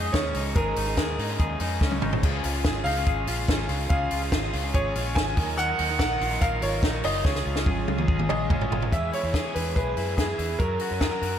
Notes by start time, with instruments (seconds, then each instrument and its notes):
Already playing: fingered electric bass F2, clean electric guitar G#2 D#4 G#4, overdriven electric guitar G#3 C#4 D#4 G#4, upright piano D#5
0.12 fingered electric bass D#2, overdriven electric guitar G#3 C#4 D#4 G#4, clean electric guitar C#4, upright piano C#5, kick, snare, closed hi-hat
0.34 fingered electric bass C#2, clean electric guitar D#4, open hi-hat
0.55 fingered electric bass G#1, clean electric guitar G#2 G#4, overdriven electric guitar G#3 C#4 D#4 G#4, upright piano A#4, kick, closed hi-hat
0.76 fingered electric bass G#1, clean electric guitar D#4, open hi-hat
0.86 overdriven electric guitar G#3 C#4 D#4 G#4
0.97 fingered electric bass D#2, clean electric guitar G#4, upright piano A#4, kick, snare, closed hi-hat
1.18 fingered electric bass G#2, clean electric guitar D#4, open hi-hat
1.29 overdriven electric guitar G#2 C#3 G#3 C#4 D#4 G#4
1.39 fingered electric bass D#2, clean electric guitar G#4, kick, closed hi-hat
1.60 fingered electric bass F2, overdriven electric guitar G#3 C#4 D#4 G#4, clean electric guitar D#4, open hi-hat
1.80 fingered electric bass C#2, overdriven electric guitar G#3 C#4 D#4 G#4, clean electric guitar C#4, kick, snare
1.91 high tom
2.02 fingered electric bass G#1, clean electric guitar D#4, mid tom
2.13 floor tom
2.23 fingered electric bass C#2, clean electric guitar C#3 G#4, overdriven electric guitar G#3 C#4 F4 G#4, kick, crash
2.44 fingered electric bass C#2, clean electric guitar F4, open hi-hat
2.53 overdriven electric guitar C#4 F4 G#4
2.65 fingered electric bass G#1, clean electric guitar G#4, kick, snare, closed hi-hat
2.84 fingered electric bass C#2, clean electric guitar D#4, upright piano F5, open hi-hat
2.96 overdriven electric guitar C#3 G#3 C#4 F4 G#4, clean electric guitar F4
3.06 fingered electric bass G#1, clean electric guitar G#4, kick, closed hi-hat
3.27 fingered electric bass A#1, overdriven electric guitar G#3 C#4 F4 G#4, clean electric guitar F4, open hi-hat
3.48 fingered electric bass G#1, overdriven electric guitar G#3 C#4 F4 G#4, clean electric guitar C#4, kick, snare, closed hi-hat
3.69 fingered electric bass C#2, clean electric guitar F4, open hi-hat
3.89 fingered electric bass C#2, clean electric guitar C#3 G#4, overdriven electric guitar G#3 C#4 F4 G#4, upright piano F5, kick, closed hi-hat
4.11 fingered electric bass C#2, clean electric guitar F4, open hi-hat
4.22 overdriven electric guitar C#4 F4 G#4
4.32 fingered electric bass G#1, clean electric guitar G#4, kick, snare, closed hi-hat
4.53 fingered electric bass C#2, clean electric guitar F4, open hi-hat
4.64 overdriven electric guitar C#3 G#3 C#4 F4 G#4
4.74 fingered electric bass G#1, clean electric guitar G#4, upright piano C#5, kick, closed hi-hat
4.95 fingered electric bass A#1, overdriven electric guitar G#3 C#4 F4 G#4, clean electric guitar F4, open hi-hat
5.15 fingered electric bass G#1, overdriven electric guitar G#3 C#4 F4 G#4, clean electric guitar C#4, upright piano G#5, kick, snare, closed hi-hat
5.37 fingered electric bass D#2, clean electric guitar D#3, overdriven electric guitar D#3 F#3 D#4 A#4, kick, open hi-hat
5.57 clean electric guitar D#3 A#4, upright piano F#5, closed hi-hat
5.79 fingered electric bass D#2, clean electric guitar D#4, open hi-hat
5.89 overdriven electric guitar D#4 A#4, clean electric guitar F4
5.99 fingered electric bass A#1, clean electric guitar A#4, upright piano F#5, kick, snare, closed hi-hat
6.21 fingered electric bass A#1, clean electric guitar F4, open hi-hat
6.31 overdriven electric guitar D#3 F#3 D#4 F4 A#4
6.41 fingered electric bass A#1, clean electric guitar A#4, upright piano F5, kick, closed hi-hat
6.62 fingered electric bass G#1, overdriven electric guitar F#3 D#4 F4 A#4, clean electric guitar F4, upright piano C#5, open hi-hat
6.83 overdriven electric guitar F#3 D#4 F4 A#4, clean electric guitar D#4, kick, snare, closed hi-hat
7.04 fingered electric bass F#1, clean electric guitar F4, upright piano D#5, open hi-hat
7.24 fingered electric bass C#2, clean electric guitar C#3 G#4, overdriven electric guitar G#3 C#4 F4 G#4, upright piano C#5, kick, snare
7.35 snare
7.46 fingered electric bass C#2, clean electric guitar F4
7.56 overdriven electric guitar C#4 F4 G#4, snare
7.66 fingered electric bass G#1, clean electric guitar G#4, kick, high tom
7.88 fingered electric bass C#2, clean electric guitar F4, high tom
7.98 overdriven electric guitar C#3 G#3 C#4 F4 G#4, mid tom
8.08 fingered electric bass G#1, clean electric guitar G#4, kick
8.19 mid tom
8.29 fingered electric bass A#1, overdriven electric guitar G#3 C#4 F4 G#4, clean electric guitar F4, upright piano D#5, mid tom
8.50 fingered electric bass G#1, overdriven electric guitar G#3 C#4 F4 G#4, clean electric guitar C#4, kick, mid tom
8.61 floor tom
8.71 fingered electric bass G#1, clean electric guitar F4, floor tom
8.82 floor tom
8.92 fingered electric bass E2, clean electric guitar E3, overdriven electric guitar G#3 B3 E4 G#4, upright piano E5, kick, closed hi-hat
9.13 clean electric guitar E4, upright piano C#5, open hi-hat
9.23 fingered electric bass E2, overdriven electric guitar B3 E4 G#4
9.34 clean electric guitar G#4, kick, snare, closed hi-hat
9.45 overdriven electric guitar E3 G#3 B3 E4 G#4
9.54 fingered electric bass E2, clean electric guitar E4, upright piano B4, open hi-hat
9.76 fingered electric bass B1, overdriven electric guitar E3 G#3 B3 E4 G#4, clean electric guitar G#4, upright piano B4, kick, closed hi-hat
9.97 fingered electric bass F#2, overdriven electric guitar E3 G#3 B3 E4 G#4, clean electric guitar E4, open hi-hat
10.17 upright piano G#4, clean electric guitar G#4, kick, snare, closed hi-hat
10.29 overdriven electric guitar B3 E4 G#4
10.38 fingered electric bass E2, clean electric guitar E4, open hi-hat
10.59 fingered electric bass F#2, overdriven electric guitar F#3 C#4 F#4 A#4, clean electric guitar F#3, upright piano A#4, kick, closed hi-hat
10.79 clean electric guitar F#4, open hi-hat
10.91 fingered electric bass F#2, overdriven electric guitar C#4 F#4 A#4
11.01 clean electric guitar G#4, upright piano A#4, kick, snare, closed hi-hat
11.11 overdriven electric guitar F#3 C#4 F#4 A#4, clean electric guitar A#4
11.22 fingered electric bass F#2, clean electric guitar F#4, open hi-hat